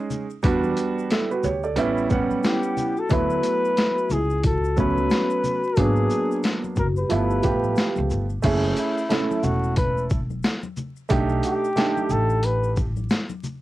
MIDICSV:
0, 0, Header, 1, 6, 480
1, 0, Start_track
1, 0, Key_signature, 3, "minor"
1, 0, Tempo, 666667
1, 318, Time_signature, 4, 2, 24, 8
1, 9806, End_track
2, 0, Start_track
2, 0, Title_t, "Flugelhorn"
2, 0, Program_c, 0, 56
2, 1766, Note_on_c, 0, 67, 88
2, 2152, Note_on_c, 0, 69, 90
2, 2162, Note_off_c, 0, 67, 0
2, 2249, Note_on_c, 0, 71, 108
2, 2260, Note_off_c, 0, 69, 0
2, 2967, Note_on_c, 0, 68, 89
2, 2978, Note_off_c, 0, 71, 0
2, 3202, Note_off_c, 0, 68, 0
2, 3208, Note_on_c, 0, 69, 86
2, 3426, Note_off_c, 0, 69, 0
2, 3450, Note_on_c, 0, 71, 113
2, 4166, Note_on_c, 0, 68, 91
2, 4177, Note_off_c, 0, 71, 0
2, 4697, Note_off_c, 0, 68, 0
2, 4884, Note_on_c, 0, 70, 81
2, 4948, Note_off_c, 0, 70, 0
2, 5029, Note_on_c, 0, 71, 89
2, 5812, Note_off_c, 0, 71, 0
2, 6323, Note_on_c, 0, 64, 85
2, 6793, Note_on_c, 0, 66, 80
2, 6804, Note_off_c, 0, 64, 0
2, 7032, Note_off_c, 0, 66, 0
2, 7036, Note_on_c, 0, 71, 91
2, 7260, Note_off_c, 0, 71, 0
2, 8248, Note_on_c, 0, 67, 88
2, 8724, Note_on_c, 0, 69, 93
2, 8735, Note_off_c, 0, 67, 0
2, 8962, Note_on_c, 0, 71, 94
2, 8972, Note_off_c, 0, 69, 0
2, 9200, Note_off_c, 0, 71, 0
2, 9806, End_track
3, 0, Start_track
3, 0, Title_t, "Vibraphone"
3, 0, Program_c, 1, 11
3, 1759, Note_on_c, 1, 64, 73
3, 2116, Note_off_c, 1, 64, 0
3, 2140, Note_on_c, 1, 66, 72
3, 2227, Note_off_c, 1, 66, 0
3, 2962, Note_on_c, 1, 64, 68
3, 3200, Note_off_c, 1, 64, 0
3, 3204, Note_on_c, 1, 66, 73
3, 3424, Note_off_c, 1, 66, 0
3, 3447, Note_on_c, 1, 66, 82
3, 4134, Note_off_c, 1, 66, 0
3, 4159, Note_on_c, 1, 62, 80
3, 4693, Note_off_c, 1, 62, 0
3, 4884, Note_on_c, 1, 66, 67
3, 4948, Note_off_c, 1, 66, 0
3, 5029, Note_on_c, 1, 67, 65
3, 5812, Note_off_c, 1, 67, 0
3, 9806, End_track
4, 0, Start_track
4, 0, Title_t, "Grand piano"
4, 0, Program_c, 2, 0
4, 0, Note_on_c, 2, 56, 84
4, 0, Note_on_c, 2, 61, 75
4, 0, Note_on_c, 2, 63, 78
4, 0, Note_on_c, 2, 68, 92
4, 174, Note_off_c, 2, 56, 0
4, 177, Note_off_c, 2, 61, 0
4, 180, Note_off_c, 2, 63, 0
4, 182, Note_off_c, 2, 68, 0
4, 308, Note_on_c, 2, 55, 88
4, 313, Note_on_c, 2, 59, 76
4, 318, Note_on_c, 2, 62, 81
4, 324, Note_on_c, 2, 66, 97
4, 799, Note_on_c, 2, 69, 62
4, 801, Note_off_c, 2, 66, 0
4, 805, Note_on_c, 2, 64, 53
4, 936, Note_off_c, 2, 69, 0
4, 939, Note_off_c, 2, 64, 0
4, 942, Note_on_c, 2, 71, 65
4, 947, Note_on_c, 2, 66, 57
4, 1033, Note_off_c, 2, 71, 0
4, 1035, Note_off_c, 2, 66, 0
4, 1039, Note_on_c, 2, 73, 65
4, 1043, Note_on_c, 2, 67, 53
4, 1071, Note_off_c, 2, 55, 0
4, 1074, Note_off_c, 2, 59, 0
4, 1077, Note_off_c, 2, 62, 0
4, 1176, Note_off_c, 2, 73, 0
4, 1178, Note_off_c, 2, 67, 0
4, 1179, Note_on_c, 2, 74, 61
4, 1183, Note_on_c, 2, 69, 52
4, 1266, Note_on_c, 2, 55, 91
4, 1272, Note_on_c, 2, 59, 86
4, 1278, Note_on_c, 2, 61, 85
4, 1281, Note_on_c, 2, 64, 102
4, 1408, Note_off_c, 2, 74, 0
4, 1411, Note_off_c, 2, 69, 0
4, 1474, Note_off_c, 2, 55, 0
4, 1477, Note_off_c, 2, 59, 0
4, 1480, Note_off_c, 2, 61, 0
4, 1481, Note_off_c, 2, 64, 0
4, 1509, Note_on_c, 2, 55, 81
4, 1514, Note_on_c, 2, 59, 77
4, 1520, Note_on_c, 2, 61, 77
4, 1527, Note_on_c, 2, 78, 86
4, 2095, Note_off_c, 2, 55, 0
4, 2097, Note_off_c, 2, 59, 0
4, 2100, Note_off_c, 2, 61, 0
4, 2104, Note_off_c, 2, 78, 0
4, 2226, Note_on_c, 2, 54, 75
4, 2231, Note_on_c, 2, 57, 67
4, 2237, Note_on_c, 2, 59, 69
4, 2243, Note_on_c, 2, 64, 77
4, 2991, Note_off_c, 2, 54, 0
4, 2993, Note_off_c, 2, 57, 0
4, 2996, Note_off_c, 2, 59, 0
4, 2999, Note_off_c, 2, 64, 0
4, 3430, Note_on_c, 2, 54, 71
4, 3436, Note_on_c, 2, 57, 62
4, 3441, Note_on_c, 2, 59, 67
4, 3447, Note_on_c, 2, 61, 78
4, 4015, Note_off_c, 2, 54, 0
4, 4018, Note_off_c, 2, 57, 0
4, 4021, Note_off_c, 2, 59, 0
4, 4024, Note_off_c, 2, 61, 0
4, 4151, Note_on_c, 2, 54, 73
4, 4156, Note_on_c, 2, 58, 68
4, 4161, Note_on_c, 2, 59, 63
4, 4167, Note_on_c, 2, 62, 77
4, 4913, Note_off_c, 2, 54, 0
4, 4916, Note_off_c, 2, 58, 0
4, 4918, Note_off_c, 2, 59, 0
4, 4921, Note_off_c, 2, 62, 0
4, 5106, Note_on_c, 2, 53, 78
4, 5111, Note_on_c, 2, 57, 70
4, 5118, Note_on_c, 2, 59, 69
4, 5122, Note_on_c, 2, 64, 81
4, 5314, Note_off_c, 2, 53, 0
4, 5316, Note_off_c, 2, 57, 0
4, 5320, Note_off_c, 2, 59, 0
4, 5322, Note_off_c, 2, 64, 0
4, 5345, Note_on_c, 2, 53, 69
4, 5349, Note_on_c, 2, 57, 65
4, 5355, Note_on_c, 2, 59, 61
4, 5362, Note_on_c, 2, 67, 75
4, 5933, Note_off_c, 2, 53, 0
4, 5935, Note_off_c, 2, 57, 0
4, 5938, Note_off_c, 2, 59, 0
4, 5941, Note_off_c, 2, 67, 0
4, 6065, Note_on_c, 2, 57, 83
4, 6071, Note_on_c, 2, 61, 77
4, 6075, Note_on_c, 2, 64, 78
4, 6080, Note_on_c, 2, 68, 98
4, 6469, Note_off_c, 2, 57, 0
4, 6472, Note_off_c, 2, 61, 0
4, 6474, Note_off_c, 2, 64, 0
4, 6476, Note_off_c, 2, 68, 0
4, 6547, Note_on_c, 2, 57, 73
4, 6552, Note_on_c, 2, 61, 61
4, 6558, Note_on_c, 2, 64, 67
4, 6564, Note_on_c, 2, 69, 77
4, 7311, Note_off_c, 2, 57, 0
4, 7313, Note_off_c, 2, 61, 0
4, 7317, Note_off_c, 2, 64, 0
4, 7320, Note_off_c, 2, 69, 0
4, 7984, Note_on_c, 2, 57, 88
4, 7988, Note_on_c, 2, 62, 81
4, 7995, Note_on_c, 2, 63, 77
4, 8000, Note_on_c, 2, 67, 90
4, 8388, Note_off_c, 2, 57, 0
4, 8390, Note_off_c, 2, 62, 0
4, 8394, Note_off_c, 2, 63, 0
4, 8396, Note_off_c, 2, 67, 0
4, 8465, Note_on_c, 2, 57, 76
4, 8470, Note_on_c, 2, 62, 65
4, 8475, Note_on_c, 2, 63, 67
4, 8481, Note_on_c, 2, 67, 82
4, 9230, Note_off_c, 2, 57, 0
4, 9233, Note_off_c, 2, 62, 0
4, 9235, Note_off_c, 2, 63, 0
4, 9238, Note_off_c, 2, 67, 0
4, 9806, End_track
5, 0, Start_track
5, 0, Title_t, "Upright bass"
5, 0, Program_c, 3, 32
5, 318, Note_on_c, 3, 40, 100
5, 518, Note_off_c, 3, 40, 0
5, 1038, Note_on_c, 3, 38, 89
5, 1279, Note_off_c, 3, 38, 0
5, 1279, Note_on_c, 3, 33, 93
5, 1678, Note_off_c, 3, 33, 0
5, 2239, Note_on_c, 3, 38, 108
5, 2438, Note_off_c, 3, 38, 0
5, 2960, Note_on_c, 3, 37, 93
5, 3650, Note_off_c, 3, 37, 0
5, 4157, Note_on_c, 3, 32, 98
5, 4357, Note_off_c, 3, 32, 0
5, 4876, Note_on_c, 3, 30, 87
5, 5077, Note_off_c, 3, 30, 0
5, 5121, Note_on_c, 3, 31, 100
5, 5320, Note_off_c, 3, 31, 0
5, 5361, Note_on_c, 3, 33, 81
5, 5559, Note_off_c, 3, 33, 0
5, 5747, Note_on_c, 3, 37, 88
5, 5824, Note_off_c, 3, 37, 0
5, 5841, Note_on_c, 3, 31, 81
5, 6040, Note_off_c, 3, 31, 0
5, 6077, Note_on_c, 3, 30, 101
5, 6277, Note_off_c, 3, 30, 0
5, 6797, Note_on_c, 3, 28, 85
5, 7488, Note_off_c, 3, 28, 0
5, 7997, Note_on_c, 3, 35, 106
5, 8197, Note_off_c, 3, 35, 0
5, 8716, Note_on_c, 3, 33, 82
5, 9408, Note_off_c, 3, 33, 0
5, 9806, End_track
6, 0, Start_track
6, 0, Title_t, "Drums"
6, 74, Note_on_c, 9, 64, 70
6, 74, Note_on_c, 9, 82, 48
6, 76, Note_off_c, 9, 82, 0
6, 76, Note_on_c, 9, 82, 46
6, 146, Note_off_c, 9, 64, 0
6, 148, Note_off_c, 9, 82, 0
6, 218, Note_on_c, 9, 82, 40
6, 290, Note_off_c, 9, 82, 0
6, 307, Note_on_c, 9, 82, 58
6, 315, Note_on_c, 9, 42, 85
6, 318, Note_on_c, 9, 36, 112
6, 379, Note_off_c, 9, 82, 0
6, 387, Note_off_c, 9, 42, 0
6, 390, Note_off_c, 9, 36, 0
6, 456, Note_on_c, 9, 63, 42
6, 456, Note_on_c, 9, 82, 38
6, 528, Note_off_c, 9, 63, 0
6, 528, Note_off_c, 9, 82, 0
6, 552, Note_on_c, 9, 42, 48
6, 552, Note_on_c, 9, 82, 49
6, 556, Note_off_c, 9, 82, 0
6, 556, Note_on_c, 9, 82, 49
6, 624, Note_off_c, 9, 42, 0
6, 628, Note_off_c, 9, 82, 0
6, 709, Note_on_c, 9, 82, 45
6, 781, Note_off_c, 9, 82, 0
6, 794, Note_on_c, 9, 63, 39
6, 794, Note_on_c, 9, 82, 50
6, 795, Note_on_c, 9, 42, 67
6, 804, Note_on_c, 9, 38, 95
6, 866, Note_off_c, 9, 63, 0
6, 866, Note_off_c, 9, 82, 0
6, 867, Note_off_c, 9, 42, 0
6, 876, Note_off_c, 9, 38, 0
6, 944, Note_on_c, 9, 82, 40
6, 1016, Note_off_c, 9, 82, 0
6, 1031, Note_on_c, 9, 64, 65
6, 1031, Note_on_c, 9, 82, 47
6, 1032, Note_off_c, 9, 82, 0
6, 1032, Note_on_c, 9, 82, 46
6, 1103, Note_off_c, 9, 64, 0
6, 1104, Note_off_c, 9, 82, 0
6, 1177, Note_on_c, 9, 82, 45
6, 1249, Note_off_c, 9, 82, 0
6, 1270, Note_on_c, 9, 42, 76
6, 1279, Note_on_c, 9, 82, 49
6, 1342, Note_off_c, 9, 42, 0
6, 1351, Note_off_c, 9, 82, 0
6, 1423, Note_on_c, 9, 82, 42
6, 1495, Note_off_c, 9, 82, 0
6, 1512, Note_on_c, 9, 82, 44
6, 1513, Note_off_c, 9, 82, 0
6, 1513, Note_on_c, 9, 82, 42
6, 1520, Note_on_c, 9, 36, 80
6, 1585, Note_off_c, 9, 82, 0
6, 1592, Note_off_c, 9, 36, 0
6, 1661, Note_on_c, 9, 63, 52
6, 1661, Note_on_c, 9, 82, 38
6, 1733, Note_off_c, 9, 63, 0
6, 1733, Note_off_c, 9, 82, 0
6, 1751, Note_on_c, 9, 82, 58
6, 1761, Note_on_c, 9, 38, 100
6, 1766, Note_on_c, 9, 42, 72
6, 1823, Note_off_c, 9, 82, 0
6, 1833, Note_off_c, 9, 38, 0
6, 1838, Note_off_c, 9, 42, 0
6, 1894, Note_on_c, 9, 82, 48
6, 1966, Note_off_c, 9, 82, 0
6, 1993, Note_on_c, 9, 64, 69
6, 1993, Note_on_c, 9, 82, 47
6, 1996, Note_off_c, 9, 82, 0
6, 1996, Note_on_c, 9, 82, 47
6, 2065, Note_off_c, 9, 64, 0
6, 2068, Note_off_c, 9, 82, 0
6, 2138, Note_on_c, 9, 82, 41
6, 2210, Note_off_c, 9, 82, 0
6, 2226, Note_on_c, 9, 82, 61
6, 2235, Note_on_c, 9, 42, 83
6, 2238, Note_on_c, 9, 36, 106
6, 2298, Note_off_c, 9, 82, 0
6, 2307, Note_off_c, 9, 42, 0
6, 2310, Note_off_c, 9, 36, 0
6, 2376, Note_on_c, 9, 63, 43
6, 2376, Note_on_c, 9, 82, 40
6, 2448, Note_off_c, 9, 63, 0
6, 2448, Note_off_c, 9, 82, 0
6, 2473, Note_on_c, 9, 42, 52
6, 2473, Note_on_c, 9, 82, 51
6, 2545, Note_off_c, 9, 42, 0
6, 2545, Note_off_c, 9, 82, 0
6, 2627, Note_on_c, 9, 82, 48
6, 2699, Note_off_c, 9, 82, 0
6, 2713, Note_on_c, 9, 63, 37
6, 2713, Note_on_c, 9, 82, 53
6, 2716, Note_on_c, 9, 42, 70
6, 2725, Note_on_c, 9, 38, 97
6, 2785, Note_off_c, 9, 63, 0
6, 2785, Note_off_c, 9, 82, 0
6, 2788, Note_off_c, 9, 42, 0
6, 2797, Note_off_c, 9, 38, 0
6, 2866, Note_on_c, 9, 82, 37
6, 2938, Note_off_c, 9, 82, 0
6, 2949, Note_on_c, 9, 64, 68
6, 2949, Note_on_c, 9, 82, 48
6, 2953, Note_off_c, 9, 82, 0
6, 2953, Note_on_c, 9, 82, 53
6, 3021, Note_off_c, 9, 64, 0
6, 3025, Note_off_c, 9, 82, 0
6, 3096, Note_on_c, 9, 82, 45
6, 3168, Note_off_c, 9, 82, 0
6, 3193, Note_on_c, 9, 42, 76
6, 3196, Note_on_c, 9, 82, 51
6, 3197, Note_on_c, 9, 36, 92
6, 3265, Note_off_c, 9, 42, 0
6, 3268, Note_off_c, 9, 82, 0
6, 3269, Note_off_c, 9, 36, 0
6, 3342, Note_on_c, 9, 82, 44
6, 3414, Note_off_c, 9, 82, 0
6, 3431, Note_on_c, 9, 82, 43
6, 3434, Note_off_c, 9, 82, 0
6, 3434, Note_on_c, 9, 82, 45
6, 3441, Note_on_c, 9, 36, 80
6, 3506, Note_off_c, 9, 82, 0
6, 3513, Note_off_c, 9, 36, 0
6, 3581, Note_on_c, 9, 63, 51
6, 3581, Note_on_c, 9, 82, 36
6, 3653, Note_off_c, 9, 63, 0
6, 3653, Note_off_c, 9, 82, 0
6, 3673, Note_on_c, 9, 82, 57
6, 3682, Note_on_c, 9, 38, 106
6, 3687, Note_on_c, 9, 42, 72
6, 3745, Note_off_c, 9, 82, 0
6, 3754, Note_off_c, 9, 38, 0
6, 3759, Note_off_c, 9, 42, 0
6, 3818, Note_on_c, 9, 82, 47
6, 3890, Note_off_c, 9, 82, 0
6, 3915, Note_on_c, 9, 64, 68
6, 3915, Note_on_c, 9, 82, 50
6, 3918, Note_off_c, 9, 82, 0
6, 3918, Note_on_c, 9, 82, 51
6, 3987, Note_off_c, 9, 64, 0
6, 3990, Note_off_c, 9, 82, 0
6, 4058, Note_on_c, 9, 82, 38
6, 4130, Note_off_c, 9, 82, 0
6, 4146, Note_on_c, 9, 82, 61
6, 4155, Note_on_c, 9, 42, 89
6, 4157, Note_on_c, 9, 36, 107
6, 4218, Note_off_c, 9, 82, 0
6, 4227, Note_off_c, 9, 42, 0
6, 4229, Note_off_c, 9, 36, 0
6, 4292, Note_on_c, 9, 63, 41
6, 4292, Note_on_c, 9, 82, 38
6, 4364, Note_off_c, 9, 63, 0
6, 4364, Note_off_c, 9, 82, 0
6, 4389, Note_on_c, 9, 82, 45
6, 4392, Note_off_c, 9, 82, 0
6, 4392, Note_on_c, 9, 82, 48
6, 4464, Note_off_c, 9, 82, 0
6, 4546, Note_on_c, 9, 82, 48
6, 4618, Note_off_c, 9, 82, 0
6, 4629, Note_on_c, 9, 63, 40
6, 4629, Note_on_c, 9, 82, 53
6, 4635, Note_on_c, 9, 42, 66
6, 4644, Note_on_c, 9, 38, 93
6, 4701, Note_off_c, 9, 63, 0
6, 4701, Note_off_c, 9, 82, 0
6, 4707, Note_off_c, 9, 42, 0
6, 4716, Note_off_c, 9, 38, 0
6, 4780, Note_on_c, 9, 63, 55
6, 4780, Note_on_c, 9, 82, 40
6, 4852, Note_off_c, 9, 63, 0
6, 4852, Note_off_c, 9, 82, 0
6, 4866, Note_on_c, 9, 64, 66
6, 4866, Note_on_c, 9, 82, 46
6, 4870, Note_off_c, 9, 82, 0
6, 4870, Note_on_c, 9, 82, 46
6, 4874, Note_on_c, 9, 36, 80
6, 4938, Note_off_c, 9, 64, 0
6, 4942, Note_off_c, 9, 82, 0
6, 4946, Note_off_c, 9, 36, 0
6, 5015, Note_on_c, 9, 82, 44
6, 5087, Note_off_c, 9, 82, 0
6, 5111, Note_on_c, 9, 42, 77
6, 5114, Note_on_c, 9, 82, 49
6, 5183, Note_off_c, 9, 42, 0
6, 5186, Note_off_c, 9, 82, 0
6, 5258, Note_on_c, 9, 82, 44
6, 5330, Note_off_c, 9, 82, 0
6, 5348, Note_on_c, 9, 82, 45
6, 5351, Note_off_c, 9, 82, 0
6, 5351, Note_on_c, 9, 42, 41
6, 5351, Note_on_c, 9, 82, 44
6, 5359, Note_on_c, 9, 36, 81
6, 5423, Note_off_c, 9, 42, 0
6, 5423, Note_off_c, 9, 82, 0
6, 5431, Note_off_c, 9, 36, 0
6, 5499, Note_on_c, 9, 63, 54
6, 5499, Note_on_c, 9, 82, 38
6, 5571, Note_off_c, 9, 63, 0
6, 5571, Note_off_c, 9, 82, 0
6, 5587, Note_on_c, 9, 82, 56
6, 5601, Note_on_c, 9, 38, 104
6, 5607, Note_on_c, 9, 42, 69
6, 5659, Note_off_c, 9, 82, 0
6, 5673, Note_off_c, 9, 38, 0
6, 5679, Note_off_c, 9, 42, 0
6, 5731, Note_on_c, 9, 63, 65
6, 5731, Note_on_c, 9, 82, 47
6, 5803, Note_off_c, 9, 63, 0
6, 5803, Note_off_c, 9, 82, 0
6, 5830, Note_on_c, 9, 64, 67
6, 5830, Note_on_c, 9, 82, 47
6, 5836, Note_off_c, 9, 82, 0
6, 5836, Note_on_c, 9, 82, 45
6, 5902, Note_off_c, 9, 64, 0
6, 5908, Note_off_c, 9, 82, 0
6, 5973, Note_on_c, 9, 82, 42
6, 6045, Note_off_c, 9, 82, 0
6, 6066, Note_on_c, 9, 82, 65
6, 6073, Note_on_c, 9, 42, 87
6, 6075, Note_on_c, 9, 49, 89
6, 6076, Note_on_c, 9, 36, 110
6, 6138, Note_off_c, 9, 82, 0
6, 6145, Note_off_c, 9, 42, 0
6, 6147, Note_off_c, 9, 49, 0
6, 6148, Note_off_c, 9, 36, 0
6, 6213, Note_on_c, 9, 63, 43
6, 6213, Note_on_c, 9, 82, 39
6, 6285, Note_off_c, 9, 63, 0
6, 6285, Note_off_c, 9, 82, 0
6, 6312, Note_on_c, 9, 42, 50
6, 6312, Note_on_c, 9, 82, 49
6, 6384, Note_off_c, 9, 42, 0
6, 6384, Note_off_c, 9, 82, 0
6, 6466, Note_on_c, 9, 82, 46
6, 6538, Note_off_c, 9, 82, 0
6, 6552, Note_on_c, 9, 64, 55
6, 6552, Note_on_c, 9, 82, 54
6, 6555, Note_on_c, 9, 42, 70
6, 6564, Note_on_c, 9, 38, 99
6, 6624, Note_off_c, 9, 64, 0
6, 6624, Note_off_c, 9, 82, 0
6, 6627, Note_off_c, 9, 42, 0
6, 6636, Note_off_c, 9, 38, 0
6, 6704, Note_on_c, 9, 63, 56
6, 6704, Note_on_c, 9, 82, 41
6, 6776, Note_off_c, 9, 63, 0
6, 6776, Note_off_c, 9, 82, 0
6, 6790, Note_on_c, 9, 82, 51
6, 6791, Note_off_c, 9, 82, 0
6, 6791, Note_on_c, 9, 64, 64
6, 6791, Note_on_c, 9, 82, 45
6, 6863, Note_off_c, 9, 64, 0
6, 6863, Note_off_c, 9, 82, 0
6, 6936, Note_on_c, 9, 82, 46
6, 7008, Note_off_c, 9, 82, 0
6, 7028, Note_on_c, 9, 42, 80
6, 7035, Note_on_c, 9, 36, 93
6, 7036, Note_on_c, 9, 82, 53
6, 7100, Note_off_c, 9, 42, 0
6, 7107, Note_off_c, 9, 36, 0
6, 7108, Note_off_c, 9, 82, 0
6, 7181, Note_on_c, 9, 82, 42
6, 7253, Note_off_c, 9, 82, 0
6, 7270, Note_on_c, 9, 82, 44
6, 7271, Note_off_c, 9, 82, 0
6, 7271, Note_on_c, 9, 82, 44
6, 7278, Note_on_c, 9, 36, 87
6, 7343, Note_off_c, 9, 82, 0
6, 7350, Note_off_c, 9, 36, 0
6, 7417, Note_on_c, 9, 63, 49
6, 7417, Note_on_c, 9, 82, 37
6, 7489, Note_off_c, 9, 63, 0
6, 7489, Note_off_c, 9, 82, 0
6, 7509, Note_on_c, 9, 82, 59
6, 7519, Note_on_c, 9, 38, 107
6, 7525, Note_on_c, 9, 42, 74
6, 7581, Note_off_c, 9, 82, 0
6, 7591, Note_off_c, 9, 38, 0
6, 7597, Note_off_c, 9, 42, 0
6, 7654, Note_on_c, 9, 63, 65
6, 7654, Note_on_c, 9, 82, 44
6, 7726, Note_off_c, 9, 63, 0
6, 7726, Note_off_c, 9, 82, 0
6, 7753, Note_on_c, 9, 82, 48
6, 7754, Note_off_c, 9, 82, 0
6, 7754, Note_on_c, 9, 64, 68
6, 7754, Note_on_c, 9, 82, 49
6, 7826, Note_off_c, 9, 64, 0
6, 7826, Note_off_c, 9, 82, 0
6, 7894, Note_on_c, 9, 82, 44
6, 7966, Note_off_c, 9, 82, 0
6, 7985, Note_on_c, 9, 82, 64
6, 7992, Note_on_c, 9, 42, 87
6, 7995, Note_on_c, 9, 36, 109
6, 8057, Note_off_c, 9, 82, 0
6, 8064, Note_off_c, 9, 42, 0
6, 8067, Note_off_c, 9, 36, 0
6, 8132, Note_on_c, 9, 63, 41
6, 8132, Note_on_c, 9, 82, 41
6, 8204, Note_off_c, 9, 63, 0
6, 8204, Note_off_c, 9, 82, 0
6, 8231, Note_on_c, 9, 42, 52
6, 8231, Note_on_c, 9, 82, 49
6, 8303, Note_off_c, 9, 42, 0
6, 8303, Note_off_c, 9, 82, 0
6, 8384, Note_on_c, 9, 82, 50
6, 8456, Note_off_c, 9, 82, 0
6, 8467, Note_on_c, 9, 64, 52
6, 8467, Note_on_c, 9, 82, 55
6, 8474, Note_on_c, 9, 42, 64
6, 8483, Note_on_c, 9, 38, 96
6, 8539, Note_off_c, 9, 64, 0
6, 8539, Note_off_c, 9, 82, 0
6, 8546, Note_off_c, 9, 42, 0
6, 8555, Note_off_c, 9, 38, 0
6, 8619, Note_on_c, 9, 63, 53
6, 8619, Note_on_c, 9, 82, 40
6, 8691, Note_off_c, 9, 63, 0
6, 8691, Note_off_c, 9, 82, 0
6, 8705, Note_on_c, 9, 64, 62
6, 8705, Note_on_c, 9, 82, 46
6, 8710, Note_off_c, 9, 82, 0
6, 8710, Note_on_c, 9, 82, 51
6, 8777, Note_off_c, 9, 64, 0
6, 8782, Note_off_c, 9, 82, 0
6, 8852, Note_on_c, 9, 82, 46
6, 8924, Note_off_c, 9, 82, 0
6, 8949, Note_on_c, 9, 42, 75
6, 8952, Note_on_c, 9, 82, 53
6, 9021, Note_off_c, 9, 42, 0
6, 9024, Note_off_c, 9, 82, 0
6, 9097, Note_on_c, 9, 82, 45
6, 9169, Note_off_c, 9, 82, 0
6, 9188, Note_on_c, 9, 82, 41
6, 9192, Note_off_c, 9, 82, 0
6, 9192, Note_on_c, 9, 82, 45
6, 9198, Note_on_c, 9, 36, 78
6, 9264, Note_off_c, 9, 82, 0
6, 9270, Note_off_c, 9, 36, 0
6, 9335, Note_on_c, 9, 63, 52
6, 9335, Note_on_c, 9, 82, 35
6, 9407, Note_off_c, 9, 63, 0
6, 9407, Note_off_c, 9, 82, 0
6, 9428, Note_on_c, 9, 82, 55
6, 9438, Note_on_c, 9, 38, 104
6, 9444, Note_on_c, 9, 42, 70
6, 9500, Note_off_c, 9, 82, 0
6, 9510, Note_off_c, 9, 38, 0
6, 9516, Note_off_c, 9, 42, 0
6, 9572, Note_on_c, 9, 63, 64
6, 9572, Note_on_c, 9, 82, 47
6, 9644, Note_off_c, 9, 63, 0
6, 9644, Note_off_c, 9, 82, 0
6, 9672, Note_on_c, 9, 64, 64
6, 9672, Note_on_c, 9, 82, 48
6, 9675, Note_off_c, 9, 82, 0
6, 9675, Note_on_c, 9, 82, 49
6, 9744, Note_off_c, 9, 64, 0
6, 9747, Note_off_c, 9, 82, 0
6, 9806, End_track
0, 0, End_of_file